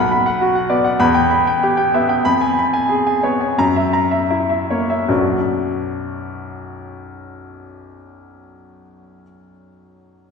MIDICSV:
0, 0, Header, 1, 2, 480
1, 0, Start_track
1, 0, Key_signature, 2, "minor"
1, 0, Tempo, 607287
1, 1779, Time_signature, 4, 2, 24, 8
1, 1779, Tempo, 665188
1, 2739, Tempo, 727273
1, 3219, Tempo, 763359
1, 6993, End_track
2, 0, Start_track
2, 0, Title_t, "Grand piano"
2, 0, Program_c, 0, 0
2, 0, Note_on_c, 0, 35, 70
2, 0, Note_on_c, 0, 78, 57
2, 0, Note_on_c, 0, 83, 85
2, 22, Control_c, 0, 64, 127
2, 91, Note_off_c, 0, 83, 0
2, 91, Note_on_c, 0, 83, 59
2, 162, Note_off_c, 0, 78, 0
2, 206, Note_on_c, 0, 78, 59
2, 281, Note_off_c, 0, 83, 0
2, 325, Note_on_c, 0, 66, 57
2, 399, Note_off_c, 0, 78, 0
2, 437, Note_on_c, 0, 78, 57
2, 518, Note_off_c, 0, 66, 0
2, 549, Note_on_c, 0, 74, 58
2, 550, Note_on_c, 0, 59, 55
2, 633, Note_off_c, 0, 78, 0
2, 668, Note_on_c, 0, 78, 59
2, 748, Note_off_c, 0, 74, 0
2, 749, Note_off_c, 0, 59, 0
2, 770, Note_off_c, 0, 35, 0
2, 787, Note_on_c, 0, 40, 76
2, 788, Note_on_c, 0, 83, 85
2, 796, Note_off_c, 0, 78, 0
2, 821, Control_c, 0, 64, 0
2, 905, Note_on_c, 0, 79, 61
2, 965, Control_c, 0, 64, 127
2, 988, Note_off_c, 0, 83, 0
2, 1035, Note_on_c, 0, 83, 59
2, 1108, Note_off_c, 0, 79, 0
2, 1164, Note_on_c, 0, 79, 60
2, 1234, Note_off_c, 0, 83, 0
2, 1291, Note_on_c, 0, 67, 61
2, 1359, Note_off_c, 0, 79, 0
2, 1401, Note_on_c, 0, 79, 58
2, 1484, Note_off_c, 0, 67, 0
2, 1536, Note_on_c, 0, 59, 57
2, 1536, Note_on_c, 0, 76, 64
2, 1601, Note_off_c, 0, 79, 0
2, 1653, Note_on_c, 0, 79, 60
2, 1732, Note_off_c, 0, 59, 0
2, 1732, Note_off_c, 0, 76, 0
2, 1741, Note_off_c, 0, 40, 0
2, 1778, Note_on_c, 0, 83, 86
2, 1779, Note_off_c, 0, 79, 0
2, 1782, Note_on_c, 0, 41, 67
2, 1796, Control_c, 0, 64, 0
2, 1894, Note_on_c, 0, 80, 61
2, 1927, Control_c, 0, 64, 127
2, 1964, Note_off_c, 0, 83, 0
2, 2022, Note_on_c, 0, 83, 62
2, 2082, Note_off_c, 0, 80, 0
2, 2128, Note_on_c, 0, 80, 63
2, 2206, Note_off_c, 0, 83, 0
2, 2240, Note_on_c, 0, 68, 58
2, 2320, Note_off_c, 0, 80, 0
2, 2368, Note_on_c, 0, 80, 55
2, 2438, Note_off_c, 0, 68, 0
2, 2488, Note_on_c, 0, 73, 52
2, 2489, Note_on_c, 0, 59, 49
2, 2564, Note_off_c, 0, 80, 0
2, 2613, Note_on_c, 0, 80, 49
2, 2687, Note_off_c, 0, 73, 0
2, 2688, Note_off_c, 0, 59, 0
2, 2711, Note_off_c, 0, 41, 0
2, 2739, Note_off_c, 0, 80, 0
2, 2741, Note_on_c, 0, 42, 65
2, 2742, Note_on_c, 0, 82, 71
2, 2755, Control_c, 0, 64, 0
2, 2859, Note_on_c, 0, 76, 59
2, 2866, Control_c, 0, 64, 127
2, 2928, Note_off_c, 0, 82, 0
2, 2971, Note_on_c, 0, 82, 54
2, 3048, Note_off_c, 0, 76, 0
2, 3090, Note_on_c, 0, 76, 57
2, 3168, Note_off_c, 0, 82, 0
2, 3216, Note_on_c, 0, 64, 55
2, 3289, Note_off_c, 0, 76, 0
2, 3338, Note_on_c, 0, 76, 50
2, 3412, Note_off_c, 0, 64, 0
2, 3468, Note_on_c, 0, 73, 48
2, 3471, Note_on_c, 0, 58, 46
2, 3537, Note_off_c, 0, 76, 0
2, 3590, Note_on_c, 0, 76, 52
2, 3662, Note_off_c, 0, 73, 0
2, 3663, Note_off_c, 0, 58, 0
2, 3683, Note_off_c, 0, 42, 0
2, 3707, Note_on_c, 0, 54, 39
2, 3708, Note_off_c, 0, 76, 0
2, 3708, Note_on_c, 0, 35, 51
2, 3708, Note_on_c, 0, 42, 41
2, 3708, Note_on_c, 0, 59, 37
2, 3711, Note_on_c, 0, 62, 40
2, 3715, Note_on_c, 0, 66, 42
2, 3721, Control_c, 0, 64, 0
2, 3872, Control_c, 0, 64, 127
2, 6306, Note_off_c, 0, 35, 0
2, 6306, Note_off_c, 0, 54, 0
2, 6307, Note_off_c, 0, 42, 0
2, 6307, Note_off_c, 0, 59, 0
2, 6309, Note_off_c, 0, 62, 0
2, 6313, Note_off_c, 0, 66, 0
2, 6993, End_track
0, 0, End_of_file